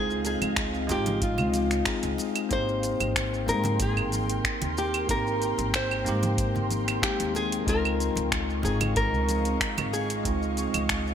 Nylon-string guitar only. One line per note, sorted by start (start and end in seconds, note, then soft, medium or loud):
0.00 0.25 G#4 loud
0.27 0.86 G#4 medium
0.92 1.21 G4 medium
1.23 2.15 F4 medium
2.53 3.49 C5 loud
3.49 3.81 A#4 medium
3.82 4.78 G#4 medium
4.78 5.10 G4 medium
5.11 5.75 A#4 loud
5.76 6.67 C5 medium
7.03 7.36 G4 medium
7.36 7.69 G#4 loud
7.69 8.28 A#4 loud
8.65 8.96 G#4 medium
8.97 9.93 A#4 loud
9.93 11.14 G#4 medium